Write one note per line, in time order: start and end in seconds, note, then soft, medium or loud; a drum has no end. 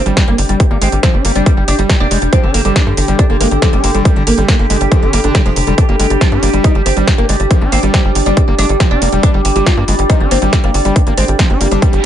0.00 12.05 D4 medium
0.00 12.05 G4 medium
0.00 6.81 G5 medium
0.00 impact medium
0.06 0.13 G#1 medium
0.06 0.16 G3 loud
0.06 0.13 G3 medium
0.06 closed hi-hat medium
0.17 0.27 G3 medium
0.17 0.23 G3 medium
0.17 kick loud
0.17 snare loud
0.17 closed hi-hat medium
0.28 0.34 G1 medium
0.28 0.35 G3 medium
0.28 0.34 A#3 loud
0.38 0.45 G1 loud
0.38 0.45 G3 medium
0.38 open hi-hat loud
0.49 0.56 G1 medium
0.49 0.59 G3 medium
0.49 0.56 G3 medium
0.49 closed hi-hat medium
0.60 kick loud
0.60 closed hi-hat medium
0.71 0.77 G#1 medium
0.71 0.77 G3 medium
0.71 0.78 A#3 medium
0.81 0.88 G#1 loud
0.81 0.89 G#3 loud
0.81 0.88 C4 medium
0.81 open hi-hat loud
0.92 0.99 G#1 loud
0.92 0.99 G3 medium
0.92 closed hi-hat medium
1.03 1.15 F3 loud
1.03 1.10 C4 medium
1.03 kick loud
1.03 snare loud
1.03 closed hi-hat medium
1.14 1.20 G1 medium
1.14 1.21 G3 medium
1.14 1.24 D4 loud
1.25 1.31 G1 loud
1.25 1.31 G3 medium
1.25 1.32 A#3 medium
1.25 open hi-hat loud
1.35 1.42 G1 medium
1.35 1.46 G3 loud
1.35 1.42 D4 medium
1.35 closed hi-hat medium
1.46 1.53 G3 medium
1.46 1.57 G3 medium
1.46 kick loud
1.46 closed hi-hat medium
1.57 1.64 G1 medium
1.57 1.64 G3 medium
1.68 1.74 G1 loud
1.68 1.75 D4 medium
1.68 open hi-hat loud
1.79 1.85 G1 loud
1.79 1.85 G3 medium
1.79 1.89 G3 medium
1.79 closed hi-hat medium
1.89 1.96 G3 medium
1.89 kick loud
1.89 snare loud
1.89 closed hi-hat medium
2.00 2.07 F1 medium
2.00 2.07 A#3 medium
2.00 2.07 D4 loud
2.11 2.18 F1 loud
2.11 2.18 G3 medium
2.11 2.18 G#3 loud
2.11 open hi-hat loud
2.22 2.28 F1 medium
2.22 2.29 G3 medium
2.22 closed hi-hat medium
2.33 2.45 F3 loud
2.33 2.39 C4 medium
2.33 kick loud
2.33 closed hi-hat medium
2.43 2.50 G1 medium
2.43 2.50 D3 medium
2.43 2.54 D4 medium
2.54 2.61 G1 loud
2.54 2.61 D3 medium
2.54 2.61 A#3 medium
2.54 open hi-hat loud
2.65 2.72 G1 medium
2.65 2.72 D3 medium
2.65 2.75 G3 loud
2.65 closed hi-hat medium
2.76 2.82 D4 loud
2.76 kick loud
2.76 snare loud
2.76 closed hi-hat medium
2.87 2.93 G2 medium
2.87 2.93 D3 medium
2.87 2.94 G3 medium
2.97 3.04 G1 loud
2.97 3.04 D3 medium
2.97 open hi-hat loud
3.08 3.15 G1 medium
3.08 3.15 D3 medium
3.08 3.18 G3 medium
3.08 closed hi-hat medium
3.19 3.26 D4 medium
3.19 kick loud
3.19 closed hi-hat medium
3.30 3.36 G1 medium
3.30 3.36 D3 medium
3.30 3.37 A#3 medium
3.41 3.47 G1 loud
3.41 3.48 G#3 loud
3.41 3.47 A#3 medium
3.41 open hi-hat loud
3.51 3.58 G#1 loud
3.51 3.58 D3 medium
3.51 closed hi-hat soft
3.62 3.69 D3 medium
3.62 3.74 F3 loud
3.62 kick loud
3.62 snare loud
3.62 closed hi-hat medium
3.73 3.79 G1 medium
3.73 3.80 G3 loud
3.73 3.83 D4 loud
3.84 3.90 G1 loud
3.84 3.90 D3 medium
3.84 3.91 A#3 medium
3.84 open hi-hat loud
3.94 4.01 G1 medium
3.94 4.01 D3 medium
3.94 4.05 G3 loud
3.94 closed hi-hat medium
4.05 4.16 G3 medium
4.05 kick loud
4.05 closed hi-hat medium
4.16 4.23 G#1 medium
4.16 4.23 D3 medium
4.16 4.23 G3 medium
4.27 4.33 G#1 loud
4.27 4.34 A#3 medium
4.27 open hi-hat loud
4.38 4.44 G#1 medium
4.38 4.44 D3 medium
4.38 4.48 G3 medium
4.38 closed hi-hat medium
4.48 4.55 A#3 medium
4.48 kick loud
4.48 snare loud
4.48 closed hi-hat medium
4.59 4.66 G1 medium
4.59 4.66 D3 medium
4.59 4.66 A#3 medium
4.70 4.77 G1 loud
4.70 4.77 D3 medium
4.70 4.77 G#3 loud
4.70 open hi-hat loud
4.81 4.87 G1 loud
4.81 4.87 G3 medium
4.81 closed hi-hat soft
4.92 4.98 D3 medium
4.92 5.04 F3 loud
4.92 kick loud
4.92 closed hi-hat medium
5.02 5.09 G1 medium
5.02 5.09 D3 medium
5.02 5.13 D4 loud
5.13 5.20 G1 loud
5.13 5.20 G3 medium
5.13 5.20 A#3 loud
5.13 open hi-hat loud
5.24 5.31 G1 medium
5.24 5.31 D3 medium
5.24 5.34 D4 loud
5.24 closed hi-hat medium
5.35 5.41 D3 medium
5.35 5.42 G3 loud
5.35 kick loud
5.35 snare loud
5.35 closed hi-hat medium
5.46 5.52 F1 medium
5.46 5.52 F3 loud
5.46 5.50 G#3 loud
5.56 5.63 F1 loud
5.56 5.63 D3 medium
5.56 open hi-hat loud
5.67 5.74 F1 medium
5.67 5.74 D3 medium
5.67 5.74 G3 loud
5.67 closed hi-hat medium
5.78 5.85 D4 medium
5.78 kick loud
5.78 closed hi-hat medium
5.89 5.95 G1 medium
5.89 5.95 G3 medium
5.89 5.96 A#3 medium
6.00 6.06 G1 loud
6.00 6.06 G3 medium
6.00 6.07 G#3 loud
6.00 open hi-hat loud
6.10 6.17 G1 loud
6.10 6.17 G3 medium
6.10 closed hi-hat medium
6.21 6.33 F3 loud
6.21 6.28 F4 medium
6.21 kick loud
6.21 snare loud
6.21 closed hi-hat medium
6.32 6.38 G2 medium
6.32 6.39 G3 medium
6.32 6.42 D4 loud
6.43 6.49 G1 loud
6.43 6.49 G3 medium
6.43 6.50 A#3 medium
6.43 open hi-hat loud
6.53 6.60 G1 medium
6.53 6.60 G3 medium
6.53 6.64 G3 loud
6.53 closed hi-hat soft
6.64 6.71 D#4 medium
6.64 kick loud
6.64 closed hi-hat medium
6.75 6.82 G1 medium
6.75 6.82 G3 medium
6.75 12.05 D5 medium
6.86 6.92 G1 loud
6.86 6.92 C4 medium
6.86 open hi-hat loud
6.97 7.03 G#1 medium
6.97 7.03 G3 medium
6.97 7.07 G3 medium
6.97 closed hi-hat medium
7.07 7.14 G3 medium
7.07 kick loud
7.07 snare loud
7.07 closed hi-hat medium
7.18 7.25 G1 medium
7.18 7.25 A#3 loud
7.18 7.25 A#3 medium
7.29 7.36 G1 loud
7.29 7.36 G3 medium
7.29 7.36 G#3 loud
7.29 open hi-hat loud
7.40 7.46 G1 medium
7.40 7.46 G3 medium
7.40 closed hi-hat medium
7.51 7.63 F3 loud
7.51 kick loud
7.51 closed hi-hat medium
7.61 7.68 G#1 medium
7.61 7.68 G3 medium
7.61 7.72 D4 loud
7.72 7.79 G#1 loud
7.72 7.79 A#3 medium
7.72 7.79 C4 medium
7.72 open hi-hat loud
7.83 7.90 G#1 medium
7.83 7.93 G3 loud
7.83 7.90 G3 medium
7.83 closed hi-hat medium
7.94 8.04 G3 medium
7.94 8.00 C4 medium
7.94 kick loud
7.94 snare loud
7.94 closed hi-hat medium
8.05 8.11 G1 medium
8.05 8.12 G3 medium
8.05 8.11 G3 medium
8.15 8.22 G1 loud
8.15 8.22 G3 medium
8.15 open hi-hat loud
8.26 8.33 G1 medium
8.26 8.36 G3 medium
8.26 8.33 D4 medium
8.26 closed hi-hat medium
8.37 8.44 G3 medium
8.37 kick loud
8.37 closed hi-hat medium
8.48 8.54 G1 medium
8.48 8.54 G3 medium
8.48 8.55 A#3 medium
8.58 8.65 G1 loud
8.58 8.66 G#3 loud
8.58 8.65 D4 loud
8.58 open hi-hat loud
8.69 8.76 G1 medium
8.69 8.76 G3 medium
8.69 closed hi-hat medium
8.80 8.92 F3 loud
8.80 8.87 G3 medium
8.80 kick loud
8.80 snare loud
8.80 closed hi-hat medium
8.91 8.97 F1 medium
8.91 8.98 D4 loud
8.91 9.01 D4 loud
9.02 9.08 F1 loud
9.02 9.08 G3 medium
9.02 9.09 A#3 medium
9.02 open hi-hat loud
9.12 9.19 F1 medium
9.12 9.19 G3 medium
9.12 9.23 G3 loud
9.12 closed hi-hat medium
9.23 9.34 G3 medium
9.23 9.30 D4 loud
9.23 kick loud
9.23 closed hi-hat medium
9.34 9.41 G1 medium
9.34 9.41 G3 medium
9.45 9.51 G1 medium
9.45 9.51 G3 medium
9.45 open hi-hat loud
9.56 9.62 G1 medium
9.56 9.62 G3 medium
9.56 9.66 G3 medium
9.56 closed hi-hat medium
9.66 9.73 F4 medium
9.66 kick loud
9.66 snare loud
9.66 closed hi-hat medium
9.77 9.84 G2 medium
9.77 9.84 G3 medium
9.77 9.84 A#3 medium
9.88 9.95 G1 loud
9.88 9.95 G3 medium
9.88 9.95 G#3 loud
9.88 open hi-hat loud
9.99 10.05 G1 medium
9.99 10.05 G3 medium
9.99 closed hi-hat medium
10.10 10.22 F3 loud
10.10 10.16 D#4 medium
10.10 kick loud
10.10 closed hi-hat medium
10.20 10.27 G1 medium
10.20 10.27 G3 medium
10.20 10.31 D4 loud
10.31 10.38 G1 loud
10.31 10.38 A#3 medium
10.31 10.38 C4 loud
10.31 open hi-hat loud
10.42 10.49 G#1 loud
10.42 10.49 G3 medium
10.42 10.52 G3 loud
10.42 closed hi-hat medium
10.53 10.59 G3 medium
10.53 10.63 G3 medium
10.53 kick loud
10.53 snare loud
10.53 closed hi-hat medium
10.64 10.70 G1 medium
10.64 10.71 G3 medium
10.64 10.70 A#3 loud
10.74 10.81 G1 loud
10.74 10.81 G3 medium
10.74 open hi-hat loud
10.85 10.92 G1 medium
10.85 10.95 G3 medium
10.85 10.92 G3 medium
10.85 closed hi-hat medium
10.96 kick loud
10.96 closed hi-hat medium
11.07 11.13 G#1 medium
11.07 11.13 G3 medium
11.07 11.14 A#3 medium
11.07 closed hi-hat soft
11.17 11.24 G#1 loud
11.17 11.25 G#3 loud
11.17 11.24 C4 medium
11.17 open hi-hat loud
11.28 11.35 G#1 medium
11.28 11.35 G3 medium
11.28 closed hi-hat medium
11.39 11.51 F3 loud
11.39 11.46 C4 medium
11.39 kick loud
11.39 snare loud
11.39 closed hi-hat medium
11.50 11.56 G1 medium
11.50 11.57 G3 medium
11.50 11.60 D4 loud
11.61 11.67 G1 loud
11.61 11.67 G3 medium
11.61 11.68 A#3 medium
11.61 open hi-hat loud
11.71 11.78 G1 medium
11.71 11.82 G3 loud
11.71 11.78 D4 medium
11.71 closed hi-hat medium
11.82 11.93 G3 medium
11.82 11.89 G3 medium
11.82 kick loud
11.82 closed hi-hat medium
11.82 reverse cymbal medium
11.93 12.00 G1 medium
11.93 12.00 G3 medium
11.93 closed hi-hat soft